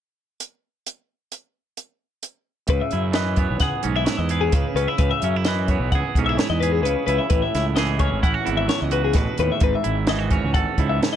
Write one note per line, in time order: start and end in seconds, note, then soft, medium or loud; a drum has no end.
0.40 closed hi-hat medium
0.87 closed hi-hat medium
1.32 closed hi-hat soft
1.77 closed hi-hat soft
2.23 closed hi-hat medium
2.68 2.80 C#2 medium
2.68 3.16 C#3 medium
2.68 2.81 B4 medium
2.68 kick loud
2.68 closed hi-hat medium
2.81 3.05 E5 medium
2.91 3.47 F#2 medium
2.91 3.83 E4 soft
2.91 closed hi-hat soft
3.13 5.46 E3 medium
3.13 3.62 B4 soft
3.13 3.39 D#5 medium
3.13 snare loud
3.13 closed hi-hat medium
3.36 5.03 B3 soft
3.36 3.60 C#5 medium
3.36 kick medium
3.36 closed hi-hat medium
3.50 3.60 B1 medium
3.60 3.72 C#2 medium
3.60 4.30 G#4 medium
3.60 3.84 F#5 medium
3.60 kick medium
3.60 snare soft
3.60 closed hi-hat medium
3.83 4.06 B1 medium
3.83 4.53 G#2 medium
3.83 3.96 C#4 soft
3.83 closed hi-hat medium
3.96 4.76 E4 soft
3.96 4.05 E5 medium
4.05 4.17 C#5 medium
4.05 snare medium
4.05 closed hi-hat medium
4.17 4.53 E2 medium
4.17 4.30 D#5 medium
4.29 5.48 G#4 soft
4.29 4.42 B4 medium
4.29 closed hi-hat soft
4.41 4.53 G#4 medium
4.52 4.64 C#2 medium
4.52 4.97 C#3 medium
4.52 4.75 B4 medium
4.52 kick medium
4.52 closed hi-hat medium
4.74 4.86 C#2 medium
4.74 4.88 C#4 medium
4.74 4.88 B4 medium
4.74 closed hi-hat soft
4.88 5.00 E4 soft
4.88 5.00 E5 medium
4.98 5.10 C#2 medium
4.98 5.46 C#3 medium
4.98 5.11 B4 medium
4.98 kick loud
4.98 closed hi-hat medium
5.11 5.34 E5 medium
5.22 5.76 F#2 medium
5.22 5.36 C#4 medium
5.22 closed hi-hat soft
5.36 6.16 E4 soft
5.45 7.77 E3 medium
5.45 5.95 B4 medium
5.45 5.68 D#5 medium
5.45 snare medium
5.45 closed hi-hat medium
5.68 7.34 B3 soft
5.68 5.92 C#5 medium
5.68 kick medium
5.68 closed hi-hat soft
5.80 5.91 B1 medium
5.92 6.03 C#2 medium
5.92 6.63 G#4 medium
5.92 6.15 F#5 medium
5.92 kick medium
5.92 closed hi-hat medium
6.15 6.36 B1 medium
6.15 6.86 G#2 medium
6.15 6.29 C#4 medium
6.15 kick medium
6.15 closed hi-hat medium
6.26 7.08 E4 soft
6.26 6.37 E5 medium
6.37 6.49 C#5 medium
6.37 snare medium
6.37 closed hi-hat medium
6.50 6.84 E2 medium
6.50 6.61 D#5 medium
6.60 7.34 G#4 soft
6.60 6.72 B4 medium
6.60 closed hi-hat medium
6.72 6.83 G#4 medium
6.83 6.95 C#2 medium
6.83 7.28 C#3 medium
6.83 7.05 B4 medium
6.83 closed hi-hat medium
7.07 7.18 C#2 medium
7.07 7.55 E4 medium
7.07 7.19 B4 medium
7.07 closed hi-hat medium
7.18 7.30 E5 medium
7.30 7.41 A1 medium
7.30 8.46 A2 medium
7.30 7.42 B4 medium
7.30 kick loud
7.30 closed hi-hat medium
7.42 7.65 E5 medium
7.55 8.08 C#2 medium
7.55 8.23 E4 soft
7.55 snare soft
7.55 closed hi-hat medium
7.76 10.07 E3 medium
7.76 8.22 G#4 medium
7.76 7.99 D#5 medium
7.76 snare medium
7.76 closed hi-hat medium
7.99 10.31 C#4 soft
7.99 8.23 C#5 medium
7.99 kick medium
7.99 closed hi-hat medium
8.12 8.22 G#1 medium
8.23 8.34 A1 medium
8.23 8.34 E4 medium
8.23 8.46 F#5 medium
8.23 kick medium
8.23 closed hi-hat medium
8.34 8.90 F#4 soft
8.45 8.68 G#1 medium
8.45 9.61 E2 medium
8.45 9.84 E4 medium
8.45 closed hi-hat medium
8.57 8.69 E5 medium
8.69 8.81 C#5 medium
8.69 snare medium
8.69 closed hi-hat medium
8.81 9.14 C#2 medium
8.81 8.92 D#5 medium
8.91 9.59 F#4 medium
8.91 9.04 B4 medium
8.91 closed hi-hat medium
9.04 9.16 G#4 medium
9.13 9.25 A1 medium
9.13 9.39 B2 medium
9.13 9.39 B4 medium
9.13 kick medium
9.13 snare soft
9.13 closed hi-hat medium
9.38 9.49 D#2 medium
9.38 9.62 A2 medium
9.38 9.51 B4 medium
9.38 closed hi-hat soft
9.52 9.63 E5 medium
9.60 9.72 G#1 medium
9.60 10.77 G#2 medium
9.60 9.74 B4 medium
9.60 kick loud
9.60 closed hi-hat medium
9.75 9.98 E5 medium
9.84 10.39 G#1 medium
9.84 10.08 E4 soft
9.84 closed hi-hat soft
10.07 11.16 E3 medium
10.07 10.19 E4 soft
10.07 10.32 D#5 medium
10.07 snare loud
10.07 closed hi-hat medium
10.19 10.54 F#4 soft
10.31 11.16 C#4 soft
10.31 10.54 C#5 medium
10.31 kick medium
10.31 closed hi-hat soft
10.44 10.54 C#2 medium
10.54 10.65 G#1 medium
10.54 11.16 A4 medium
10.54 10.77 F#5 medium
10.54 kick medium
10.54 closed hi-hat medium
10.78 10.99 C#2 medium
10.78 11.16 G#2 medium
10.78 11.16 E4 medium
10.78 kick medium
10.78 closed hi-hat medium
10.89 11.01 E5 medium
11.01 11.12 C#5 medium
11.01 snare medium
11.01 closed hi-hat medium
11.13 11.16 D#5 medium